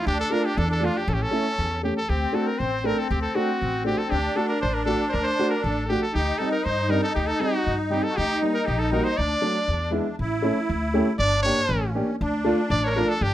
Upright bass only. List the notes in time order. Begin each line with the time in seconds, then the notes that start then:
0.07 D2
0.58 E2
1.08 A1
1.58 E2
2.09 D2
2.60 A1
3.11 D2
3.62 A1
4.12 D2
4.63 A1
5.14 D2
5.64 A1
6.15 D2
6.66 G2
7.16 D2
7.67 G2
8.18 D2
8.68 A#1
9.19 D2
9.68 E2
10.19 A1
10.70 D2
11.19 G1
11.69 A1
12.21 D2
12.70 A1
13.21 G1